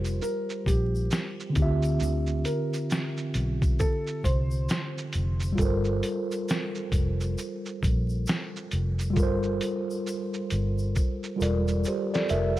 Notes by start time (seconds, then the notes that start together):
Already playing: F1 G3 F4 G4 A#4 C5
0.04 shaker
0.22 A#4, shaker
0.23 shaker
0.50 shaker
0.66 A#1 G4, kick, closed hi-hat, shaker
0.95 shaker
1.11 snare, shaker
1.40 shaker
1.50 D3 C4
1.55 D2 E4, kick, closed hi-hat, shaker
1.60 F4 G4 E5
1.82 shaker
1.84 shaker
2.00 D2, shaker
2.03 shaker
2.27 shaker
2.45 A#4, closed hi-hat, shaker
2.73 shaker
2.90 snare, shaker
3.17 shaker
3.34 B1, closed hi-hat, shaker
3.62 kick, shaker
3.79 A4, kick, shaker
4.07 shaker
4.24 C2 C5, kick, closed hi-hat, shaker
4.51 shaker
4.69 snare, shaker
4.98 shaker
5.13 closed hi-hat, shaker
5.14 F1, shaker
5.40 shaker
5.42 shaker
5.52 G3 F4
5.58 G1 A4, kick, shaker
5.61 A#4, shaker
5.65 C5
5.85 shaker
6.03 closed hi-hat, shaker
6.31 shaker
6.49 snare, shaker
6.75 shaker
6.92 F1, kick, closed hi-hat, shaker
7.20 shaker
7.38 shaker
7.66 shaker
7.83 A#1, kick, closed hi-hat, shaker
8.09 shaker
8.27 snare, shaker
8.56 shaker
8.71 F1, closed hi-hat, shaker
8.99 shaker
9.00 shaker
9.10 G3 F4
9.16 G1 A4, kick, shaker
9.19 A#4, shaker
9.23 C5
9.43 shaker
9.61 closed hi-hat, shaker
9.91 shaker
10.07 shaker
10.34 shaker
10.50 G1, closed hi-hat, shaker
10.79 shaker
10.95 kick, shaker
11.24 shaker
11.36 G3 F4 A4
11.41 E1 A#4 D5, closed hi-hat, shaker
11.68 shaker
11.84 G4 C5, shaker
12.14 A4 D5, snare, shaker
12.29 F1 A#4 E5, closed hi-hat, shaker